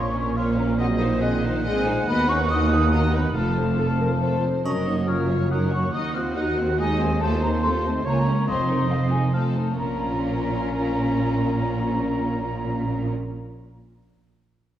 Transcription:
Already playing: A#1 A#2 A#3 C#4 F4 C#5 C#6
0.14 C#4 A#4
0.35 A#3 C4 F4 C#5 F5 C6
0.57 A#3 C#4 A#4 A#5
0.79 F#3 C4 G#4 D#5 F#5
1.01 F3 D#4 C5 F5
1.22 D#3 C4 G#4 D#5 F#5
1.43 D#3 D#4 C5 D#5
1.65 G#3 C4 G#4 D#5 G#5
1.86 D#4 C5
2.07 D#2 B3 F#4 D#5 B5
2.11 B3
2.28 C#4 D#4 B4 C#6
2.48 B3 D#4 F#4 D#5 D#6
2.70 D#4 B4
2.91 A#3 B3 F#4 D#5 A#5
3.13 B3 D#4 B4 B5
3.35 F1 F2 A3 F4 A4 F5 A5
3.57 C4 A4 C5
3.78 A3 F4 A4
3.99 C4 A4 A#4 C5
4.21 A3 F4 A4 C5
4.43 C4 A4 C5
4.64 F#1 F#2 F#3 C#4 A#4 D#5 C#6, triangle
4.86 A#3 D#4 F#4 C#5 D#6
5.07 F#3 C#4 F4 A#4 C#5 F6
5.29 A#3 F#4 C#5
5.50 F#3 C#4 D#4 A#4 F#5 D#6
5.72 A#3 C#4 F#4 C#5 C#6
5.92 D#2 D#4 D#5 D#6
6.14 C4 F4 F#4 C5 F6
6.36 D#4 F#4 D#5 F#5 F#6
6.57 C4 F#4 C5
6.78 G#3 D#4 D#5 G#5
6.99 C4 F#4 C5
7.20 A3 F4 A4 C5 A5
7.42 A#3 C4 D#4 C5 A#5
7.63 A3 C4 F4 A4 C6
7.84 A3 C4 D#4 C5 A5
8.05 C#2 A#3 F4 C#5 A#5
8.12 G#5
8.18 A#5
8.26 C#4 A#4
8.47 F1 F2 C4 F4 C5 D#5 C6
8.68 D#4 A#4
8.89 F3 C4 F4 C5 F5
9.09 G#3 D#4 A#4 G#5
9.32 A3 C4 F4 A4 F5 A5
9.55 D#4 A4 C5
9.75 A#1 A#2 A#3 C#4 F4 A#4 A#5

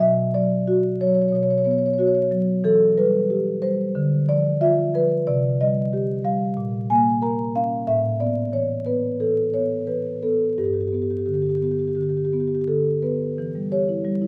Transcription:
0.00 B2 E5
0.34 F#3 D5
0.67 F#4
1.01 F#3 C#5
1.07 C#5
1.15 C#5
1.22 C#5
1.28 C#5
1.32 B2 C#5
1.43 C#5
1.50 C#5
1.58 C#5
1.64 B3 C#5
1.71 C#5
1.78 C#5
1.86 C#5
1.94 C#5
1.99 F#4 C#5
2.07 C#5
2.15 C#5
2.22 C#5
2.31 F#3
2.64 E3 A4
2.97 G3 B4
3.30 G4
3.62 G3 C5
3.95 D3
4.29 F3 D5
4.61 F4 E5
4.95 F3 B4
5.27 C3 D5
5.61 G3 D#5
5.93 G4
6.24 G3 F5
6.57 A#2
6.90 A#3 G#5
7.22 A#4 A#5
7.55 C#4 F5
7.87 A2 E5
8.20 B3 D5
8.53 E3 C#5
8.86 B3 B4
9.20 E3 A4
9.53 B3 C#5
9.87 E3 B4
10.23 B3 A4
10.58 G2 G4
10.65 G4
10.73 G4
10.81 G4
10.87 G4
10.93 B3 G4
11.02 G4
11.10 G4
11.18 G4
11.26 D3 G4
11.34 G4
11.42 G4
11.49 G4
11.57 G4
11.61 B3 G4
11.71 G4
11.79 G4
11.88 G4
11.95 D3 G4
12.02 G4
12.09 G4
12.17 G4
12.25 G4
12.32 B3 G4
12.40 G4
12.47 G4
12.55 G4
12.61 G4
12.67 D3 A4
13.02 B3 B4
13.38 E3
13.55 G3
13.72 G4 C#5
13.89 E4
14.05 G3
14.22 E4

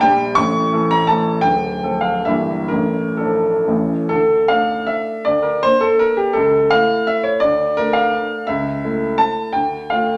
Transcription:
Already playing: A#1 A#2
0.01 G3 D4 G4 G5
0.35 A1 A2 C#6
0.73 E3 A3 A4
0.91 A#5
1.07 E3 A3 A4 A5
1.41 D1 D2 G5
1.83 F3 A3 A4
2.01 F5
2.25 G1 G2 E3 A#3 E4 E5
2.68 A1 A2 A#4
3.17 F3 A3 D4 A4
3.67 A1 A2 E3 A3 C#4
4.09 D2 A4
4.48 A3 D4 F5
4.87 E5
5.25 D2 D5
5.42 A#4
5.63 A#3 D4 C5
5.81 A4
5.99 A#4
6.17 G4
6.33 C#2 A4
6.71 A3 E4 F5
7.07 E5
7.24 C#5
7.40 D2 D5
7.77 A3 D4 A#4
7.93 F5
8.47 C#2 E5
8.84 A3 E4
9.18 A5
9.53 D2 G5
9.90 A3 F4 F5

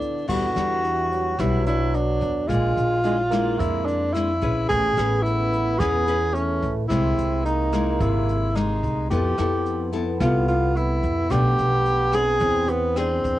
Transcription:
Already playing: D3 B3 D4 E4 A4
0.01 kick, closed hi-hat
0.28 E2 D3 E3 G3 D4 F#4, kick, crash
0.56 E2 G3 D4 F#4, cross-stick, closed hi-hat
0.84 E3, closed hi-hat
1.12 F#3, closed hi-hat
1.39 B1 B2 G3 D4 E4 F#4, kick, cross-stick, closed hi-hat
1.66 D4 E4 F#4, closed hi-hat
1.94 D4, closed hi-hat
2.21 E2, kick, closed hi-hat
2.48 A#1 A#2 G#3 D4 F4, kick, cross-stick, closed hi-hat
2.77 A#1, closed hi-hat
3.04 G#3 D4 E4, closed hi-hat
3.31 G#3 A#3 D4 E4, cross-stick, closed hi-hat
3.59 F2 F3 E4, kick, closed hi-hat
3.86 D4, closed hi-hat
4.13 G#3 D4 E4, cross-stick, closed hi-hat
4.41 A#1 C#4 G#4 B4, kick, closed hi-hat
4.69 A1 A3 B3 G#4, kick, closed hi-hat
4.97 A1 C#4 G#4 B4, cross-stick, closed hi-hat
5.22 E4, closed hi-hat
5.53 closed hi-hat
5.79 E2 E3 C#4 G#4 B4, kick, cross-stick, closed hi-hat
6.07 C#4 G#4 B4, closed hi-hat
6.34 A3 C#4, closed hi-hat
6.63 A1, kick, closed hi-hat
6.89 C2 C3 G#3 A#3 C4 E4, kick, cross-stick, closed hi-hat
7.18 C2, closed hi-hat
7.45 A#3 D#4, closed hi-hat
7.72 G#3 A#3 E4, cross-stick, closed hi-hat
8.01 G#1 C3 E4, kick, closed hi-hat
8.29 closed hi-hat
8.55 G#3 A#3 D#4, cross-stick, closed hi-hat
8.83 C2, kick, closed hi-hat
9.10 F2 F3 B3 E4 G4 A4, kick, closed hi-hat
9.38 F2 B3 E4 A4, cross-stick, closed hi-hat
9.66 closed hi-hat
9.92 B3 E4 A4, closed hi-hat
10.20 C2 C3 B3 E4 F4 A4, kick, cross-stick, closed hi-hat
10.48 F4, closed hi-hat
10.76 E4, closed hi-hat
11.03 F2, kick, closed hi-hat
11.30 B1 B2 F3 A3 B3 D4 G4, kick, cross-stick, closed hi-hat
11.58 B1, closed hi-hat
11.85 closed hi-hat
12.12 C4 D4 G#4, cross-stick, closed hi-hat
12.40 E2 E3 C4, kick, closed hi-hat
12.68 B3, closed hi-hat
12.96 C4 D4 G#4, cross-stick, closed hi-hat
13.24 E2, kick, closed hi-hat

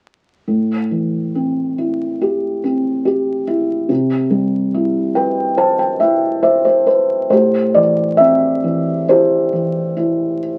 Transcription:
0.48 A2
0.91 E3
1.35 C4
1.78 E4
2.21 G4
2.64 C4
3.05 G4
3.47 E4
3.89 C3
4.30 G3
4.74 E4
5.15 B4 G5
5.57 C5 A5
5.79 G5
6.00 E4 E5
6.43 C5 E5
6.65 C5
6.86 B4 C5
7.30 A2 G4 C5
7.74 E3 D5
8.17 C4 E5
8.64 E3
9.08 E4 G4 C5
9.53 E3
9.97 E4

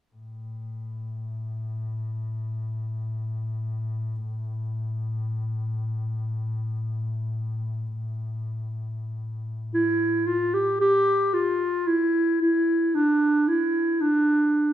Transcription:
0.14 A2
9.74 E4
10.27 F4
10.54 G4
10.80 G4
11.34 F4
11.87 E4
12.42 E4
12.94 D4
13.48 E4
14.01 D4

